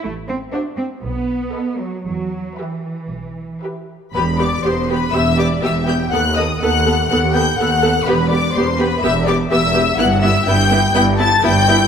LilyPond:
<<
  \new Staff \with { instrumentName = "Violin section" } { \time 4/4 \key e \minor \tempo 4 = 123 r4 e''4 r4 dis''4 | r4 e''4 r4 e''4 | b''8 d'''8 c'''8 b''8 e'''8 d'''8 e'''8 g'''8 | fis'''8 dis'''8 fis'''4 fis'''8 g'''8 fis'''4 |
b''8 d'''8 c'''8 b''8 e'''8 d'''8 e'''4 | fis'''8 e'''8 g'''4 g'''8 a'''8 g'''4 | }
  \new Staff \with { instrumentName = "Violin section" } { \time 4/4 \key e \minor r4 c''4 r4 b'4 | r4 b'4 r4 b'4 | b'8 d''8 c''8 b'8 e''8 d''8 e''8 g''8 | fis''8 dis''8 fis''4 fis''8 g''8 fis''4 |
b'8 d''8 c''8 b'8 e''8 d''8 e''4 | fis''8 e''8 g''4 g''8 a''8 g''4 | }
  \new Staff \with { instrumentName = "Viola section" } { \time 4/4 \key e \minor r4 fis'4 r4 a'4 | r4 g'4 r4 g'4 | <b g'>8 <b g'>8 <b g'>8 <b g'>8 <b g'>8 <b g'>8 <b g'>8 <b g'>8 | <b a'>8 <b a'>8 <b a'>8 <b a'>8 <b a'>8 <b a'>8 <b a'>8 <b a'>8 |
<b g'>8 <b g'>8 <b g'>8 <b g'>8 <b g'>8 <b g'>8 <b g'>8 <b g'>8 | <b e'>8 <b e'>8 <b e'>8 <b e'>8 <b e'>8 <b e'>8 <b e'>8 <b e'>8 | }
  \new Staff \with { instrumentName = "Cello section" } { \clef bass \time 4/4 \key e \minor a8 c'8 d'8 c'8 b4. fis8 | fis4 e2 r4 | e,4 e,4 e,4 e,4 | dis,4 dis,4 dis,4 dis,4 |
e,4 e,4 e,4 e,4 | g,4 g,4 g,4 g,4 | }
  \new Staff \with { instrumentName = "Double bass section" } { \clef bass \time 4/4 \key e \minor a,,4 r4 b,,4 r4 | e,4 r4 b,,4 r4 | e,,4 e,,4 e,,4 e,,4 | dis,4 dis,4 dis,4 dis,4 |
e,,4 e,,4 e,,4 e,,4 | g,,4 g,,4 g,,4 g,,4 | }
>>